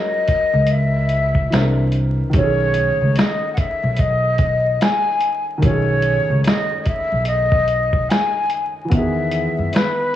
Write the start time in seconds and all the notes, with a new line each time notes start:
Already playing: F#3 C#4 E4 A#4 D#5
0.28 kick, closed hi-hat
0.53 C#2
0.67 closed hi-hat
0.71 E5
1.09 closed hi-hat
1.35 kick
1.50 C2 E3 C4, finger snap, snare, closed hi-hat
1.55 D4 A#4
1.92 closed hi-hat
2.30 D#3, closed hi-hat
2.34 B1 A3 C#5, kick
2.38 C#4
2.43 G#4
2.74 closed hi-hat
3.01 C#2
3.16 D#5, finger snap, snare, closed hi-hat
3.53 F#5, closed hi-hat
3.58 E5, kick
3.83 B1
3.96 D#5, kick, closed hi-hat
4.38 kick, closed hi-hat
4.81 G#5, finger snap, snare, closed hi-hat
5.21 closed hi-hat
5.58 D#3
5.62 B1 A3 C#5, kick, closed hi-hat
5.67 C#4
5.71 G#4
6.03 closed hi-hat
6.30 C#2
6.45 D#5, finger snap, snare, closed hi-hat
6.84 D#5 E5, kick, closed hi-hat
7.12 B1
7.25 D#5, closed hi-hat
7.52 kick
7.68 closed hi-hat
7.93 kick
8.10 G#5, finger snap, snare, closed hi-hat
8.50 closed hi-hat
8.85 E3
8.89 E2 B3 E5, kick, closed hi-hat
8.94 D#3
8.98 G#4
9.31 closed hi-hat
9.59 F#2
9.73 B4, finger snap, snare, closed hi-hat